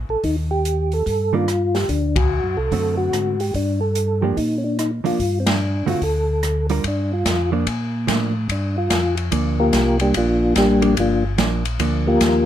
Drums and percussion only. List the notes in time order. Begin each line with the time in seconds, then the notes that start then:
0.24 kick, open hi-hat
0.65 closed hi-hat
0.92 open hi-hat
1.06 kick, open hi-hat
1.48 cross-stick, closed hi-hat
1.75 snare, open hi-hat
1.89 kick, open hi-hat
2.16 kick, ride
2.72 kick, open hi-hat
3.13 cross-stick, closed hi-hat
3.40 open hi-hat
3.54 kick, open hi-hat
3.95 closed hi-hat
4.37 kick, open hi-hat
4.79 cross-stick, closed hi-hat
5.05 open hi-hat
5.20 kick, open hi-hat
5.47 snare, ride
5.88 open hi-hat
6.02 kick, open hi-hat
6.43 cross-stick, closed hi-hat
6.69 open hi-hat
6.84 kick, ride
7.25 kick, snare, hi-hat pedal, ride
7.67 kick, ride
8.08 kick, snare, hi-hat pedal, ride
8.49 kick, ride
8.90 kick, snare, hi-hat pedal, ride
9.17 ride
9.32 kick, ride
9.73 kick, snare, hi-hat pedal, ride
10.00 ride
10.14 kick, ride
10.56 kick, snare, hi-hat pedal, ride
10.82 ride
10.97 kick, ride
11.38 kick, snare, hi-hat pedal, ride
11.65 ride
11.79 kick, ride
12.21 kick, snare, hi-hat pedal, ride